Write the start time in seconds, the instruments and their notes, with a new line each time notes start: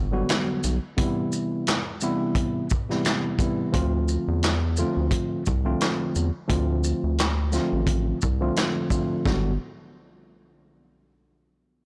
Already playing: analog synth bass G1
0.12 tine electric piano D3 F#3 G3 B3 F#4
0.29 snare, clap, closed hi-hat
0.64 analog synth bass B1, closed hi-hat, shaker
0.97 tine electric piano C3 E3 G3 B3 E4, kick, closed hi-hat
1.32 shaker
1.67 snare, clap, closed hi-hat
2.01 tine electric piano C3 E3 G3 B3 E4, shaker
2.35 kick, closed hi-hat
2.70 kick, shaker
2.90 tine electric piano C3 E3 G3 B3 E4, snare
3.05 snare, clap, closed hi-hat
3.39 tine electric piano C3 E3 G3 B3 E4, kick, closed hi-hat, shaker
3.72 analog synth bass D2, tine electric piano D3 F3 A3 C4 F4, kick, closed hi-hat
4.08 shaker
4.28 analog synth bass E2
4.43 snare, clap, closed hi-hat
4.77 tine electric piano D3 F3 A3 C4 F4, shaker
4.97 analog synth bass D2
5.11 kick, closed hi-hat
5.46 analog synth bass C2, kick, shaker
5.65 tine electric piano D3 F3 A3 C4 F4
5.81 snare, clap, closed hi-hat
6.15 analog synth bass E2, shaker
6.48 analog synth bass D2, tine electric piano D3 F3 A3 C4 F4, kick, closed hi-hat
6.84 shaker
7.04 analog synth bass D2
7.18 snare, clap, closed hi-hat
7.52 tine electric piano D3 F3 A3 C4 F4, snare, shaker
7.73 analog synth bass A1
7.87 kick, closed hi-hat
8.22 analog synth bass C2, kick, shaker
8.40 tine electric piano D3 F3 A3 C4 F4
8.56 snare, clap, closed hi-hat
8.90 tine electric piano D3 F3 A3 C4 F4, kick, shaker
9.25 analog synth bass G1, tine electric piano D3 F#3 G3 B3 F#4, kick, snare